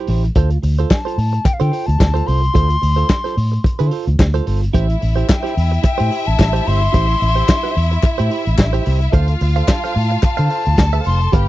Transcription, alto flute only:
0.92 A5
1.46 G5
1.53 F5
1.61 G5
1.86 A5
2.27 C6
5.31 G5
5.85 G5
6.27 A5
6.67 C6
9.70 A5
9.97 A5
10.23 A5
11.06 C6
11.33 B5

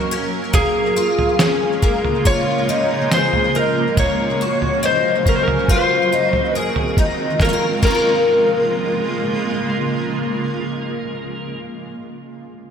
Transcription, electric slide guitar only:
0.55 G#4
2.27 C#5
3.14 C5
3.56 A#4
3.99 C#5
4.86 C5
5.29 A#4
5.36 C5
5.43 A#4
5.73 C5
6.56 A#4
7.43 A#4
7.85 A#4

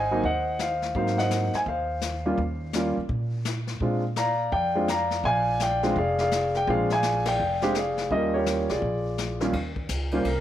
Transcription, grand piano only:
Already playing: C5 D#5 F#5 G#5
0.11 F#3 A#3 C4 D#4
0.25 C5 D#5 F#5
0.61 C5 F5
0.96 F#3 A#3 C4 D#4 C5 F5
1.18 C5 D#5 F#5
1.55 G#5
1.68 C5 F5
2.26 G3 A#3 C#4 F4
2.75 G3 A#3 C#4 F4
3.82 G#3 C4 D4 F4
4.17 D5 F5 A#5
4.52 D5 G5
4.75 G#3 C4 D4 F4
4.90 D5 F5 A#5
5.25 D5 F5 G#5
5.62 D5 G5
5.83 G#3 C4 D4 F4
5.98 G#4 D5 F5
6.21 G#4 D5 F5
6.57 G5
6.68 G#3 C4 D4 F4 G#4 D5 F5
6.92 D5 F5 G#5
7.28 D5 G5
7.62 G#3 C4 D4 G4 F5
7.76 G#4 D5 F5
8.11 G3 A#3 C#4 F4 G4 A#4 D#5
8.34 G4 A#4 C#5
8.70 F4 G#4 D5
9.41 D#2 G3 A#3 C#4 F4
10.13 G3 A#3 C#4 F4 C5
10.28 A#4

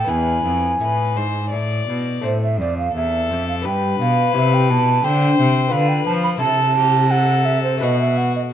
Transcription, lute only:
0.04 B3 E4 B4
0.10 E2
0.45 F2
0.80 A2
1.16 G#2
1.52 A2
1.89 B2
2.21 A3 C4 C5
2.25 A2
2.62 F2
2.97 E2
3.32 F2
3.62 B3 D4 G4
3.66 G2
4.01 B2
4.31 C4 E4 G4
4.36 C3
4.71 B2
5.04 D3
5.39 C3
5.68 B3 F4 B4
5.72 D3
6.06 F3
6.36 C4 E4 A4
6.41 C3
7.77 A3 F#4 B4
7.82 B2

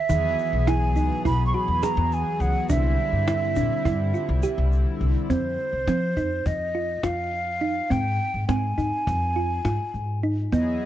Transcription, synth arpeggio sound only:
0.09 D#3
0.67 E4
0.96 D#4
1.25 E4
1.54 F#4
1.83 G#4
2.70 D4
3.28 E4
3.57 D4
3.85 E4
4.14 F4
4.43 G4
5.30 C4
5.88 C4
6.17 D#4
6.75 F4
7.04 F4
7.61 D#4
7.90 C4
8.49 C4
8.78 D#4
9.36 F4
9.65 F4
10.23 D#4
10.53 B3

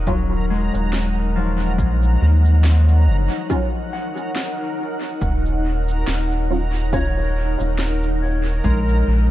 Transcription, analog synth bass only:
Already playing: D#1
0.74 D#1
1.78 A#1
2.22 D#2
3.07 F#1
5.22 D#1
6.08 D#1
7.60 D#1
8.64 A#1
9.07 A#1

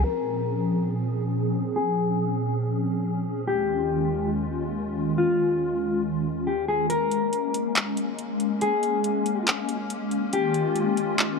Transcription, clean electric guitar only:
0.04 A#4
1.76 G#4
3.48 G4
5.18 F4
6.47 G4
6.68 G#4
6.90 A#4
8.62 G#4
10.33 G4

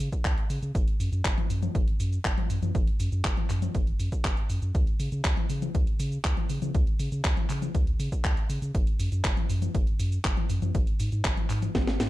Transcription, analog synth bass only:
0.25 C#2
0.50 C#3
0.63 C#3
0.75 F#1
1.00 F#2
1.12 F#2
1.25 F#1
1.50 F#2
1.75 F#1
2.00 F#2
2.25 F#1
2.50 F#2
2.62 F#2
2.75 F#1
3.00 F#2
3.12 F#2
3.25 F#1
3.50 F#2
3.75 F#1
4.00 F#2
4.25 F#1
4.50 F#2
4.62 F#2
4.75 C#2
5.00 C#3
5.12 C#3
5.25 C#2
5.50 C#3
5.75 C#2
6.00 C#3
6.25 C#2
6.50 C#3
6.62 C#3
6.75 C#2
7.00 C#3
7.12 C#3
7.25 C#2
7.50 C#3
7.75 C#2
8.00 C#3
8.25 C#2
8.50 C#3
8.62 C#3
8.75 F#1
9.00 F#2
9.12 F#2
9.25 F#1
9.50 F#2
9.75 F#1
10.00 F#2
10.25 F#1
10.50 F#2
10.62 F#2
10.75 G#1
11.00 G#2
11.12 G#2
11.25 G#1
11.50 G#2
11.75 G#1
12.00 G#2

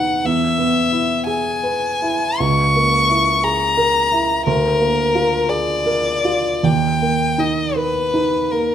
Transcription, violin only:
Already playing: F#5
0.26 E5
1.27 G#5
2.39 C#6
3.44 A#5
4.46 A#4
5.49 D5
6.64 G5
7.39 D#5
7.76 B4
8.51 A#4

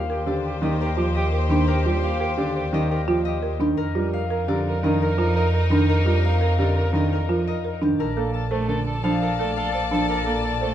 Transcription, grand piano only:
0.26 D3
0.62 D#3
0.97 F3
1.49 D#3
1.85 G3
2.38 D3
2.73 D#3
3.07 F3
3.59 D#3
3.95 G3
4.48 D3
4.83 D#3
5.18 F3
5.70 D#3
6.05 G3
6.58 D3
6.93 D#3
7.28 F3
7.82 D#3
8.16 A#3
8.51 A3
8.68 D3
9.04 F3
9.39 A3
9.91 F3
10.27 A#3
10.62 A3

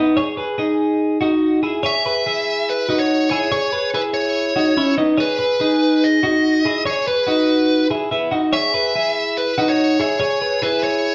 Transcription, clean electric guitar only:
Already playing: B3 D#4
0.17 G#4 C#5
0.37 G#4 B4
0.58 D#4 G#4
1.21 D#4 F#4
1.63 E4 G#4
1.83 G#4 C#5
2.06 G#4 B4
2.26 E4 G#4
2.89 D#4 F#4
3.31 E4 G#4
3.52 G#4 C#5
3.73 G#4 B4
3.94 E4 G#4
4.56 D#4 F#4
4.77 C#4 E4
4.98 B3 D#4
5.17 G#4 C#5
5.39 G#4 B4
5.60 D#4 G#4
6.23 D#4 F#4
6.65 E4 G#4
6.86 G#4 C#5
7.08 G#4 B4
7.27 D#4 F#4
7.90 E4 G#4
8.11 B3 E4
8.31 D#4 F#4
8.53 G#4 C#5
8.74 G#4 B4
8.96 E4 G#4
9.58 D#4 F#4
10.00 E4 G#4
10.20 G#4 C#5
10.42 G#4 B4
10.62 E4 G#4

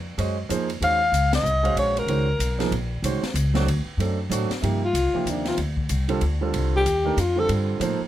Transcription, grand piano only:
0.18 G#3 C#4 F#4 C5 D#5
0.49 F3 A#3 D#4 G#4 C5
0.81 D#3 G#3 C#4 F#4 C5
1.63 G#3 C#4 F#4 C5 F5
2.08 D#3 G#3 C#4 F#4 C5
2.59 F3 A#3 D#4 G#4 A#4
3.03 D#3 G#3 C#4 F#4 C5
3.54 F#3 A3 C4 D4 F#4
3.99 F#3 A3 C4 D4 A4
4.30 F#3 A3 C4 D4 F#4
4.62 C3 F3 A#3 D#4 G4
5.14 C3 F3 A#3 D#4 G4
6.08 D3 G3 C4 F4 A4
6.41 D3 G3 C4 F4 A4
7.04 D#3 A3 D4 G4 A#4
7.36 D3 G3 C4 F4 A4
7.80 F3 A#3 D#4 A4 C5

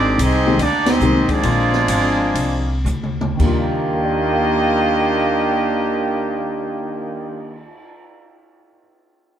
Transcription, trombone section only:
Already playing: D#3 G#3 D4
0.19 G#3 C4 D#4
0.60 D4
0.87 G#3 C4 D#4
1.30 F3 G#3 D4
3.40 D#3 A#3 D4 G4

